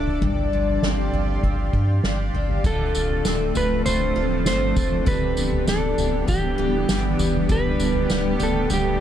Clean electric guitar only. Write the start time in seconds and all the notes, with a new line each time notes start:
Already playing: D4
2.66 A4
3.57 B4
3.86 C5
4.47 C5
5.08 B4
5.69 A4
6.29 G4
7.52 B4
8.43 A4
8.74 G4